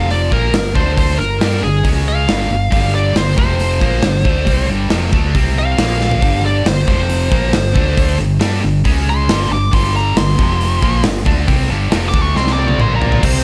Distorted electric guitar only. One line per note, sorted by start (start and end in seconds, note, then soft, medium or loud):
0.00 0.31 F2 medium
0.00 0.31 C3 medium
0.00 0.31 F3 medium
0.31 0.53 A#2 medium
0.31 0.53 F3 medium
0.31 0.53 A#3 medium
0.53 0.71 G2 medium
0.53 0.71 D3 medium
0.75 1.18 D3 medium
0.75 1.18 A3 medium
0.75 1.18 D4 loud
1.19 1.36 G2 medium
1.19 1.36 D3 medium
1.41 1.62 G3 medium
1.41 1.63 D4 medium
1.41 1.63 G4 loud
1.63 1.80 G2 medium
1.63 1.80 D3 medium
1.84 2.28 C#3 medium
1.84 2.28 G#3 medium
1.84 2.28 C#4 loud
2.28 2.48 G2 medium
2.28 2.48 D3 loud
2.28 2.49 G3 medium
2.49 2.67 G2 medium
2.49 2.67 D3 medium
2.70 3.14 G2 loud
2.70 3.14 D3 medium
2.70 3.15 G3 medium
3.15 3.33 G2 medium
3.15 3.33 D3 medium
3.36 3.80 F2 medium
3.36 3.80 C3 loud
3.36 3.79 F3 loud
3.81 4.02 A#2 medium
3.81 4.02 F3 medium
3.81 4.02 A#3 loud
4.03 4.21 G2 medium
4.03 4.21 D3 medium
4.24 4.45 D3 medium
4.24 4.45 A3 medium
4.24 4.46 D4 medium
4.45 4.67 C3 medium
4.45 4.67 G3 loud
4.45 4.68 C4 loud
4.67 4.89 G2 loud
4.67 4.90 D3 medium
4.67 4.90 G3 loud
4.90 5.12 F2 medium
4.90 5.11 C3 medium
4.90 5.12 F3 loud
5.12 5.34 D3 medium
5.12 5.34 A3 loud
5.12 5.34 D4 loud
5.34 5.77 C3 medium
5.34 5.78 G3 medium
5.34 5.78 C4 loud
5.78 6.21 A#2 medium
5.78 6.22 F3 medium
5.78 6.22 A#3 loud
6.21 6.63 G2 loud
6.21 6.64 D3 loud
6.21 6.65 G3 medium
6.64 6.83 G2 medium
6.64 6.83 D3 medium
6.87 7.31 F2 medium
6.87 7.30 C3 medium
6.87 7.30 F3 medium
7.30 7.52 A#2 medium
7.30 7.53 F3 loud
7.30 7.53 A#3 loud
7.53 7.71 G2 medium
7.53 7.71 D3 medium
7.74 8.18 D3 medium
7.74 8.18 A3 loud
7.74 8.19 D4 medium
8.19 8.37 G2 medium
8.19 8.37 D3 medium
8.40 8.62 G3 medium
8.40 8.62 D4 medium
8.40 8.62 G4 medium
8.63 8.81 G2 medium
8.63 8.81 D3 medium
8.84 9.28 C#3 medium
8.84 9.28 G#3 medium
8.84 9.28 C#4 loud
9.29 9.50 G2 medium
9.29 9.50 D3 medium
9.29 9.51 G3 loud
9.51 9.68 G2 medium
9.51 9.69 D3 medium
9.72 10.15 G2 medium
9.72 10.16 D3 loud
9.72 10.16 G3 loud
10.16 10.34 G2 medium
10.16 10.34 D3 medium
10.38 10.81 F2 medium
10.38 10.81 C3 medium
10.38 10.81 F3 loud
10.82 11.03 A#2 medium
10.82 11.04 F3 medium
10.82 11.04 A#3 medium
11.04 11.22 G2 medium
11.04 11.22 D3 medium
11.25 11.47 D3 medium
11.25 11.47 A3 loud
11.25 11.47 D4 loud
11.47 11.69 C3 loud
11.47 11.69 G3 loud
11.47 11.69 C4 loud
11.70 11.90 G2 loud
11.70 11.91 D3 loud
11.70 11.91 G3 loud
11.91 12.12 F2 medium
11.91 12.13 C3 loud
11.91 12.13 F3 loud
12.13 12.34 D3 loud
12.13 12.35 A3 medium
12.13 12.35 D4 loud
12.35 12.78 C3 medium
12.35 12.79 G3 loud
12.35 12.79 C4 loud
12.78 13.22 A#2 medium
12.78 13.22 F3 medium
12.78 13.22 A#3 medium
13.22 13.44 C3 loud
13.22 13.44 G3 loud
13.22 13.44 C4 loud